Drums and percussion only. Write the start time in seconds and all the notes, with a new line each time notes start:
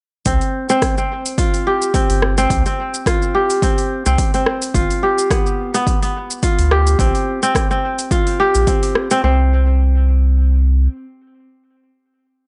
0.26 kick, open hi-hat, shaker
0.41 open hi-hat, shaker
0.69 shaker
0.82 kick, cross-stick, open hi-hat, shaker
0.98 shaker
1.26 open hi-hat, shaker
1.38 kick, open hi-hat, shaker
1.54 open hi-hat, shaker
1.82 shaker
1.94 kick, open hi-hat, shaker
2.10 open hi-hat, shaker
2.22 cross-stick
2.38 open hi-hat, shaker
2.50 kick, open hi-hat, shaker
2.66 open hi-hat, shaker
2.94 shaker
3.06 kick, cross-stick, open hi-hat, shaker
3.22 shaker
3.50 open hi-hat, shaker
3.62 kick, open hi-hat, shaker
3.78 open hi-hat, shaker
4.06 shaker
4.18 kick, open hi-hat, shaker
4.34 open hi-hat, shaker
4.46 cross-stick
4.62 open hi-hat, shaker
4.74 kick, open hi-hat, shaker
4.91 open hi-hat, shaker
5.18 shaker
5.31 kick, cross-stick, open hi-hat, shaker
5.46 shaker
5.74 open hi-hat, shaker
5.87 kick, open hi-hat, shaker
6.03 open hi-hat, shaker
6.31 shaker
6.43 kick, open hi-hat, shaker
6.59 open hi-hat, shaker
6.71 cross-stick
6.87 open hi-hat, shaker
6.99 kick, open hi-hat, shaker
7.15 open hi-hat, shaker
7.43 shaker
7.55 kick, cross-stick, open hi-hat, shaker
7.71 shaker
7.99 open hi-hat, shaker
8.11 kick, open hi-hat, shaker
8.27 open hi-hat, shaker
8.55 open hi-hat, shaker
8.67 kick, open hi-hat, shaker
8.83 open hi-hat, shaker
8.95 cross-stick
9.11 open hi-hat, shaker